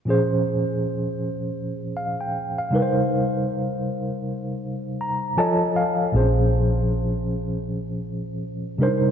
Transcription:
0.05 2.67 A#2 medium
0.05 2.68 F3 medium
0.05 2.69 C#4 medium
0.05 2.69 G#4 medium
0.10 2.70 C5 medium
1.97 2.19 F5 medium
2.21 2.56 G5 medium
2.58 2.94 F5 soft
2.71 5.33 C3 medium
2.71 5.34 G3 medium
2.71 5.34 D#4 soft
2.71 5.35 A#4 soft
2.76 2.82 B4 soft
2.82 5.39 C5 medium
5.01 5.36 A#5 medium
5.37 6.12 F3 medium
5.37 6.13 F4 medium
5.37 6.14 A4 medium
5.37 6.14 C#5 medium
5.37 6.14 D#5 medium
5.37 6.14 G#5 medium
5.37 5.73 A5 medium
5.76 6.11 F5 medium
6.12 8.76 A#1 medium
6.12 8.74 A#2 medium
6.12 8.75 F3 medium
6.12 6.22 C4 soft
6.12 8.76 G#4 medium
6.17 8.77 C5 medium
6.21 8.79 C#4 medium
8.78 9.11 C3 medium
8.78 9.11 G3 medium
8.78 8.88 D4 soft
8.78 9.11 A#4 medium
8.83 9.11 C5 medium
8.87 9.11 D#4 medium

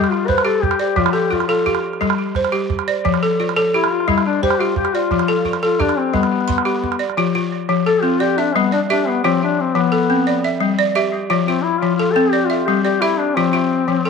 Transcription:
0.00 0.28 G3 medium
0.00 0.11 G4 medium
0.00 0.12 G4 medium
0.00 calabash click soft
0.11 0.28 F4 medium
0.11 calabash click soft
0.27 0.47 B4 medium
0.27 0.80 C5 medium
0.27 calabash thump medium
0.27 calabash click soft
0.38 calabash click medium
0.45 0.79 G4 medium
0.45 0.64 A4 medium
0.63 0.80 G4 medium
0.63 calabash thump medium
0.71 calabash click medium
0.79 1.00 G4 medium
0.79 1.14 D5 medium
0.96 1.31 F3 medium
0.96 1.16 F4 medium
0.96 calabash thump medium
1.06 calabash click medium
1.13 1.35 G4 medium
1.13 1.48 A4 medium
1.30 1.83 F4 medium
1.30 1.48 F4 medium
1.30 calabash thump medium
1.40 calabash click soft
1.48 1.84 F4 medium
1.48 1.83 A4 medium
1.48 calabash click soft
1.66 2.18 G4 medium
1.66 calabash thump medium
1.75 calabash click soft
1.93 calabash click soft
2.01 2.35 G3 medium
2.01 calabash thump medium
2.01 calabash click soft
2.10 calabash click soft
2.18 calabash click soft
2.35 2.87 C5 medium
2.35 calabash thump medium
2.35 calabash click soft
2.45 calabash click soft
2.52 2.86 G4 medium
2.70 calabash thump medium
2.79 calabash click soft
2.88 3.22 D5 medium
3.05 3.39 F3 medium
3.05 calabash thump medium
3.14 calabash click soft
3.23 3.55 A4 medium
3.40 3.91 F4 medium
3.49 calabash click soft
3.56 3.90 A4 medium
3.56 calabash click soft
3.73 3.93 E4 medium
3.73 4.25 G4 medium
3.84 calabash click soft
3.91 4.11 F4 loud
4.00 calabash click soft
4.08 4.42 G3 medium
4.08 4.25 E4 medium
4.08 calabash thump medium
4.08 calabash click soft
4.18 calabash click soft
4.26 4.41 D4 medium
4.26 calabash click soft
4.43 4.62 G4 loud
4.43 4.94 C5 medium
4.43 calabash thump medium
4.51 calabash click soft
4.61 4.76 F4 medium
4.61 4.94 G4 medium
4.76 4.95 G4 medium
4.76 calabash thump medium
4.85 calabash click soft
4.94 5.45 F4 loud
4.94 5.28 D5 medium
5.11 5.45 F3 medium
5.11 calabash thump medium
5.11 calabash click soft
5.19 calabash click soft
5.28 5.62 A4 medium
5.28 calabash click soft
5.45 5.97 F4 medium
5.45 calabash thump medium
5.53 calabash click soft
5.63 5.82 F4 medium
5.63 5.97 A4 medium
5.80 6.00 D4 medium
5.80 6.31 G4 medium
5.80 calabash thump medium
5.89 calabash click soft
5.98 6.16 C4 medium
6.14 6.48 G3 medium
6.14 7.00 B3 medium
6.14 calabash thump medium
6.23 calabash click soft
6.41 calabash click soft
6.48 7.00 C6 medium
6.48 calabash thump medium
6.58 calabash click soft
6.65 7.00 G4 medium
6.65 calabash click soft
6.83 calabash thump medium
6.92 calabash click soft
6.99 7.34 D5 medium
7.10 calabash click soft
7.17 7.52 F3 medium
7.17 7.34 F4 medium
7.35 7.86 F4 medium
7.69 8.03 F3 medium
7.86 8.38 A4 medium
7.86 8.04 A4 medium
8.03 8.20 C4 medium
8.03 8.22 F4 loud
8.20 8.40 G4 loud
8.20 8.71 D5 medium
8.38 8.57 D4 medium
8.38 8.89 E5 medium
8.56 8.90 G3 medium
8.56 8.73 B3 medium
8.72 8.81 D4 medium
8.72 9.24 D5 medium
8.89 9.09 D4 medium
8.89 9.24 G4 medium
8.89 9.41 E5 medium
9.08 9.23 B3 medium
9.23 9.59 F3 medium
9.23 9.39 C4 medium
9.23 9.76 F4 medium
9.43 9.62 D4 medium
9.61 9.78 C4 medium
9.75 10.10 F3 medium
9.75 10.45 B3 medium
9.92 10.44 A4 medium
10.10 10.27 C4 medium
10.27 10.77 D5 medium
10.44 10.94 E5 medium
10.60 10.95 G3 medium
10.79 11.30 D5 medium
10.95 11.30 G4 medium
10.95 11.47 E5 medium
11.30 11.64 F3 medium
11.30 11.47 F4 medium
11.46 11.65 C4 medium
11.46 11.99 F4 medium
11.63 11.80 E4 medium
11.79 11.95 F4 loud
11.83 12.16 F3 medium
11.96 12.14 F4 loud
11.96 12.51 A4 medium
12.12 12.33 C4 medium
12.12 12.32 A4 loud
12.30 12.47 G4 loud
12.30 12.83 D5 medium
12.45 12.64 F4 loud
12.50 13.01 E5 medium
12.65 13.02 G3 medium
12.65 12.82 G4 medium
12.83 13.02 G4 medium
12.83 13.36 D5 medium
13.01 13.19 E4 medium
13.01 13.36 G4 medium
13.01 13.53 E5 medium
13.18 13.36 D4 medium
13.35 13.71 F3 medium
13.35 14.10 C4 medium
13.35 13.52 F4 medium
13.53 14.05 F4 medium
13.88 14.10 F3 medium
14.05 14.10 A4 medium

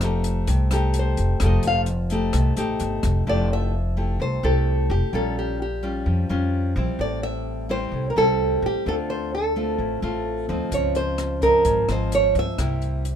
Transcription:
0.00 0.44 F1 medium
0.00 0.46 F3 medium
0.00 0.68 A3 medium
0.00 0.68 D#4 medium
0.00 0.68 G4 medium
0.00 cross-stick medium
0.00 closed hi-hat soft
0.24 closed hi-hat soft
0.47 1.14 C2 loud
0.47 1.39 C3 medium
0.47 kick medium
0.47 closed hi-hat medium
0.71 1.37 A3 medium
0.71 1.38 D#4 medium
0.71 1.38 G4 medium
0.71 cross-stick medium
0.71 closed hi-hat soft
0.94 closed hi-hat soft
0.99 1.40 C5 medium
1.17 1.39 F1 loud
1.17 closed hi-hat soft
1.40 1.62 F1 loud
1.40 2.32 F3 medium
1.40 1.88 A3 medium
1.40 1.88 D#4 medium
1.40 1.88 G4 medium
1.40 kick medium
1.40 cross-stick medium
1.40 closed hi-hat medium
1.46 1.66 D#5 medium
1.63 2.30 F1 medium
1.63 closed hi-hat soft
1.67 1.80 F5 loud
1.86 closed hi-hat soft
2.10 2.54 A3 medium
2.10 2.54 D#4 medium
2.10 2.54 G4 medium
2.10 closed hi-hat soft
2.33 2.55 C2 loud
2.33 3.25 C3 medium
2.33 kick medium
2.33 cross-stick medium
2.33 closed hi-hat medium
2.57 2.78 A1 medium
2.57 3.23 A3 medium
2.57 3.23 D#4 medium
2.57 3.24 G4 medium
2.57 closed hi-hat soft
2.80 3.02 G1 medium
2.80 closed hi-hat soft
3.03 3.24 F1 loud
3.03 kick medium
3.03 cross-stick medium
3.03 closed hi-hat soft
3.27 4.16 F1 medium
3.27 4.18 F3 medium
3.27 3.73 A3 medium
3.27 3.74 E4 medium
3.27 3.74 G4 medium
3.27 3.52 D5 loud
3.53 4.21 E5 loud
3.97 4.40 A3 medium
3.97 4.40 E4 medium
3.97 4.40 G4 medium
4.20 4.42 C2 medium
4.20 5.11 C3 medium
4.20 4.45 C5 medium
4.43 4.87 C2 loud
4.43 5.10 A3 medium
4.43 5.10 E4 medium
4.43 5.10 G4 medium
4.43 4.91 A4 medium
4.90 5.01 F1 loud
4.90 5.15 G4 medium
5.13 6.02 A#1 medium
5.13 6.04 A#2 medium
5.13 5.59 G3 medium
5.13 5.60 C#4 medium
5.13 5.60 F4 medium
5.13 5.38 A4 medium
5.39 5.61 G4 medium
5.62 6.27 G4 medium
5.83 6.26 G3 medium
5.83 6.26 C#4 medium
5.83 6.26 F4 medium
6.06 6.28 F2 medium
6.06 6.97 F3 medium
6.29 6.73 F2 medium
6.29 6.72 G3 medium
6.29 6.73 C#4 medium
6.29 6.73 F4 medium
6.76 6.87 A#1 loud
6.76 7.66 G3 medium
6.76 7.66 C4 medium
6.76 7.66 E4 medium
6.99 7.88 A1 medium
6.99 7.90 A2 medium
6.99 7.22 D5 loud
7.23 7.70 E5 loud
7.69 8.12 G3 medium
7.69 8.13 C4 medium
7.69 8.13 E4 medium
7.69 8.10 C5 loud
7.92 8.14 C2 medium
7.92 8.84 A2 medium
8.10 8.17 A#4 medium
8.16 8.59 C2 medium
8.16 8.82 G3 medium
8.16 8.83 C4 medium
8.16 8.83 E4 medium
8.16 8.65 A4 loud
8.62 8.73 A1 medium
8.62 8.88 G4 medium
8.86 9.75 D2 medium
8.86 9.77 D3 medium
8.86 9.32 A3 medium
8.86 9.33 C4 medium
8.86 9.33 F4 medium
8.86 8.94 A4 medium
9.10 9.34 C5 medium
9.35 9.99 A4 medium
9.56 9.99 A3 medium
9.56 9.99 C4 medium
9.56 9.99 F4 medium
9.78 10.00 A1 medium
9.78 10.70 A2 medium
10.02 10.46 A1 medium
10.02 10.45 A3 medium
10.02 10.45 C4 medium
10.02 10.46 F4 medium
10.49 10.60 D2 medium
10.49 11.38 F3 medium
10.49 11.39 C4 medium
10.49 11.39 D#4 medium
10.71 11.61 C#2 medium
10.71 11.63 C#3 medium
10.71 10.96 C#5 medium
10.71 kick medium
10.71 closed hi-hat soft
10.95 11.43 C5 medium
10.95 closed hi-hat soft
11.18 cross-stick medium
11.18 closed hi-hat soft
11.42 11.85 F3 medium
11.42 11.85 C4 medium
11.42 11.85 D#4 medium
11.42 11.91 A#4 medium
11.42 kick soft
11.42 closed hi-hat soft
11.65 11.87 G#1 medium
11.65 12.56 G#2 medium
11.65 kick medium
11.65 closed hi-hat soft
11.88 12.32 G#1 medium
11.88 12.55 F3 medium
11.88 12.55 C4 medium
11.88 12.55 D#4 medium
11.88 12.14 C5 medium
11.88 cross-stick medium
11.88 closed hi-hat soft
12.12 12.35 C#5 medium
12.12 closed hi-hat soft
12.35 12.46 G2 loud
12.35 kick medium
12.35 closed hi-hat soft
12.39 13.03 E5 loud
12.58 13.15 C2 medium
12.58 13.15 C3 medium
12.58 13.05 G3 medium
12.58 13.05 A#3 soft
12.58 13.05 E4 medium
12.58 kick medium
12.58 cross-stick medium
12.58 closed hi-hat soft
12.82 closed hi-hat soft
13.05 closed hi-hat soft

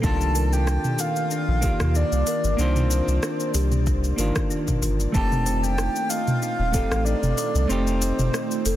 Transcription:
0.00 0.78 C2 loud
0.00 8.76 D#3 medium
0.00 1.59 A#3 loud
0.00 5.10 A#3 medium
0.00 1.60 D4 medium
0.00 0.20 D4 medium
0.00 5.10 F4 loud
0.00 5.10 D5 medium
0.00 0.54 A5 loud
0.00 kick loud
0.00 cabasa soft
0.05 1.60 D#3 medium
0.05 1.61 F4 loud
0.21 cabasa soft
0.35 0.66 A#4 medium
0.35 open hi-hat medium
0.35 cabasa medium
0.53 1.02 G5 loud
0.53 cabasa soft
0.67 0.98 D4 medium
0.67 cross-stick medium
0.67 cabasa soft
0.84 mid tom medium
0.84 cabasa soft
0.99 1.30 F4 medium
0.99 1.96 F5 loud
0.99 open hi-hat medium
0.99 cabasa medium
1.16 cabasa soft
1.31 1.48 D4 medium
1.31 cabasa soft
1.48 1.72 A#1 loud
1.61 2.56 D#3 medium
1.61 2.55 A#3 medium
1.61 2.55 D4 medium
1.61 2.57 F4 medium
1.61 1.80 G4 loud
1.61 kick loud
1.61 open hi-hat medium
1.61 cabasa medium
1.80 2.04 D#2 loud
1.80 cross-stick medium
1.80 mid tom medium
1.80 cabasa soft
1.95 2.12 D4 medium
1.95 2.56 D5 medium
1.95 cabasa soft
2.12 2.23 C2 medium
2.12 cabasa soft
2.27 2.58 A#4 medium
2.27 open hi-hat medium
2.27 cabasa medium
2.44 2.55 G1 loud
2.44 cabasa soft
2.57 3.01 C2 loud
2.57 4.16 D#3 medium
2.57 4.14 A#3 loud
2.57 4.15 D4 medium
2.57 2.90 D4 medium
2.57 4.16 F4 loud
2.57 3.51 C5 medium
2.57 cabasa soft
2.76 mid tom medium
2.76 cabasa soft
2.91 3.22 F4 medium
2.91 open hi-hat medium
2.91 cabasa medium
3.08 3.19 C2 loud
3.08 cabasa soft
3.23 3.40 D4 medium
3.23 cross-stick medium
3.23 cabasa soft
3.40 cabasa soft
3.54 4.13 C2 medium
3.54 3.71 G4 loud
3.54 open hi-hat medium
3.54 cabasa medium
3.72 mid tom medium
3.72 cabasa soft
3.87 4.03 D4 medium
3.87 kick loud
3.87 cabasa soft
4.04 cabasa soft
4.16 4.32 G1 medium
4.16 5.11 D#3 medium
4.16 5.10 A#3 medium
4.16 5.10 D4 medium
4.16 4.49 A#4 medium
4.16 open hi-hat medium
4.16 cabasa medium
4.20 5.12 F4 medium
4.36 kick loud
4.36 cross-stick medium
4.36 cabasa soft
4.50 4.81 D4 medium
4.50 cabasa soft
4.68 kick medium
4.68 mid tom medium
4.68 cabasa soft
4.82 5.07 G1 medium
4.82 5.13 F4 medium
4.82 open hi-hat medium
4.82 cabasa medium
5.00 cabasa soft
5.12 5.89 F1 loud
5.12 6.70 A3 medium
5.12 8.76 A3 medium
5.12 6.70 C4 medium
5.12 8.76 C4 medium
5.12 5.31 D#4 medium
5.12 6.71 D#4 medium
5.12 8.76 F4 loud
5.12 5.56 A5 loud
5.12 kick loud
5.12 cabasa soft
5.17 6.72 G4 loud
5.32 mid tom medium
5.32 cabasa soft
5.46 5.63 C5 medium
5.46 open hi-hat medium
5.46 cabasa medium
5.56 5.65 A5 medium
5.63 6.11 G5 loud
5.63 cabasa soft
5.78 5.95 D#4 medium
5.78 cross-stick medium
5.78 cabasa soft
5.96 cabasa soft
6.09 6.41 D#5 medium
6.09 7.04 F5 loud
6.09 open hi-hat medium
6.09 cabasa medium
6.28 mid tom medium
6.28 cabasa soft
6.42 6.73 D#4 medium
6.42 cabasa soft
6.59 6.83 D#1 loud
6.72 7.65 A3 medium
6.72 7.66 C4 medium
6.72 7.67 D#4 medium
6.72 7.67 G4 medium
6.72 7.05 A4 medium
6.72 kick loud
6.72 open hi-hat medium
6.72 cabasa medium
6.91 7.15 A1 loud
6.91 cross-stick medium
6.91 cabasa soft
7.05 7.23 D#4 medium
7.05 7.70 D5 medium
7.05 cabasa soft
7.23 7.34 F1 medium
7.23 mid tom medium
7.23 cabasa soft
7.38 7.54 C5 loud
7.38 open hi-hat medium
7.38 cabasa medium
7.55 7.66 C2 loud
7.55 cabasa soft
7.68 8.12 F1 loud
7.68 8.76 A3 loud
7.68 8.76 C4 medium
7.68 7.86 D#4 medium
7.68 8.76 D#4 medium
7.68 8.65 C5 medium
7.68 cabasa soft
7.72 8.76 G4 loud
7.87 cabasa soft
8.02 8.32 D#5 medium
8.02 open hi-hat medium
8.02 cabasa medium
8.19 8.30 F1 medium
8.19 mid tom medium
8.19 cabasa soft
8.33 8.64 D#4 medium
8.33 cross-stick medium
8.33 cabasa soft
8.51 cabasa soft
8.65 8.76 F1 medium
8.65 8.76 A4 medium
8.65 open hi-hat loud
8.65 cabasa medium

